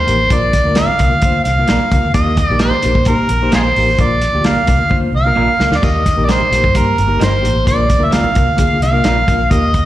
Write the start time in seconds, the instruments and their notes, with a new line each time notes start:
Already playing: harmonica C5
0.06 fingered electric bass A1, reed electric piano A#3 D#4 G4 A#4, closed hi-hat
0.30 fingered electric bass A#1, reed electric piano A#3 D4 F4 A#4, harmonica D5, kick, closed hi-hat
0.53 kick, snare, closed hi-hat, muted conga
0.64 fingered electric bass D2, reed electric piano A#3 D4 F4 A#4
0.75 clean electric guitar A#3 D4 F4 A#4, harmonica F5, snare, closed hi-hat, muted conga
0.88 high conga, low conga
0.99 fingered electric bass C2, reed electric piano A#3 D4 F4 A#4, kick, closed hi-hat, muted conga, high conga, low conga
1.10 fingered electric bass D2
1.22 reed electric piano A#3 D4 F4 C5, kick, closed hi-hat
1.44 fingered electric bass C2, harmonica F5, snare, closed hi-hat, high conga
1.58 reed electric piano A#3 D4 F4 A#4
1.68 fingered electric bass A#1, clean electric guitar A#3 D4 F4 A#4, snare, closed hi-hat, muted conga, high conga
1.92 fingered electric bass C#2, reed electric piano A#3 D4 F4 A#4, kick, closed hi-hat, muted conga
2.03 fingered electric bass D2
2.14 fingered electric bass D#2, reed electric piano A#3 D#4 G4 A#4, harmonica D#5, kick, closed hi-hat
2.37 kick, snare, closed hi-hat
2.46 fingered electric bass A#1, reed electric piano A#3, harmonica D5
2.51 reed electric piano D#4 G4 A#4
2.59 clean electric guitar A#3 D#4 G4 A#4, harmonica C5, snare, closed hi-hat, muted conga
2.71 high conga, low conga
2.83 fingered electric bass A#1, reed electric piano A#3 D#4 G4 A#4, closed hi-hat, high conga, low conga
2.95 fingered electric bass A#2, kick
3.05 reed electric piano A#3 D#4, harmonica A#4, kick, closed hi-hat, muted conga
3.10 reed electric piano G4 A#4
3.29 fingered electric bass A#1, closed hi-hat, muted conga, high conga
3.42 reed electric piano A#3 D#4 G4 C5
3.52 fingered electric bass A#1, clean electric guitar A#3 D#4 G4 A#4, harmonica F4 G#4 C5, snare, closed hi-hat, muted conga, high conga
3.76 fingered electric bass A1, reed electric piano A#3 D#4 G4 A#4, open hi-hat
3.98 fingered electric bass A#1, reed electric piano A#3 D4 F4 A#4, harmonica D5, kick, closed hi-hat, muted conga
4.21 snare, closed hi-hat, muted conga
4.33 fingered electric bass D2, reed electric piano A#3 D4 F4 G4
4.44 clean electric guitar A#3 D4 F4 A#4, harmonica F5, snare, closed hi-hat, muted conga
4.55 high conga, low conga
4.66 fingered electric bass C2, reed electric piano A#3 D4 F4 A#4, kick, closed hi-hat, muted conga, high conga, low conga
4.79 fingered electric bass D2
4.90 reed electric piano A#3 D4 F4 C5, kick, muted conga, low conga
5.13 fingered electric bass C2, harmonica F5, high conga
5.25 reed electric piano A#3 D4 F4 A#4
5.36 fingered electric bass A#1, clean electric guitar A#3 D4 F4 A#4, muted conga, high conga
5.59 fingered electric bass C#2, reed electric piano A#3 D4 F4 A#4, snare, muted conga
5.71 fingered electric bass D2, snare
5.77 harmonica D5
5.82 fingered electric bass D#2, reed electric piano A#3 D#4 G4 A#4, harmonica D#5, kick, splash
6.05 kick, snare, closed hi-hat, muted conga
6.16 fingered electric bass A#1, reed electric piano A#3 D#4 G4 A#4
6.25 clean electric guitar A#3 D#4 G4 A#4, harmonica D5, closed hi-hat
6.29 harmonica C5, snare, muted conga
6.40 high conga, low conga
6.51 fingered electric bass A#1, reed electric piano A#3 D#4 G4 A#4, snare, closed hi-hat, high conga, low conga
6.64 fingered electric bass G2, kick
6.74 reed electric piano A#3 D#4 G4 A#4, harmonica A#4, kick, closed hi-hat, muted conga
6.98 fingered electric bass G1, closed hi-hat, muted conga, high conga
7.07 reed electric piano A#3 D#4 G4 A#4
7.20 fingered electric bass G1, clean electric guitar A#3 D#4 G4 A#4, snare, closed hi-hat, muted conga, high conga
7.24 harmonica C5
7.42 fingered electric bass A1, reed electric piano A#3 D#4 G4 C5, closed hi-hat
7.65 fingered electric bass A#1, reed electric piano A#3 D4 F4 A#4, harmonica D5, kick, closed hi-hat
7.90 kick, closed hi-hat
7.98 fingered electric bass D2, reed electric piano A#3 D4 F4 A#4
8.04 harmonica E5
8.11 clean electric guitar A#3 D4 F4 A#4, harmonica F5, snare, closed hi-hat
8.24 high conga, low conga
8.34 fingered electric bass C2, reed electric piano A#3 D4 F4 A#4, kick, closed hi-hat, muted conga, high conga, low conga
8.47 fingered electric bass D2
8.57 reed electric piano A#3 D4 F4 G#4, kick, closed hi-hat, muted conga
8.82 fingered electric bass C2, harmonica F5, snare, closed hi-hat, muted conga, high conga
8.92 reed electric piano A#3 D4 F4 A#4
9.04 fingered electric bass A#1, clean electric guitar A#3 D4 F4 A#4, snare, closed hi-hat, high conga
9.27 fingered electric bass A#1, reed electric piano A#3 D4 F4 A#4, kick, closed hi-hat, muted conga
9.49 fingered electric bass D#2, reed electric piano A#3 D#4 G4 A#4, harmonica D#5, kick, closed hi-hat
9.74 kick, closed hi-hat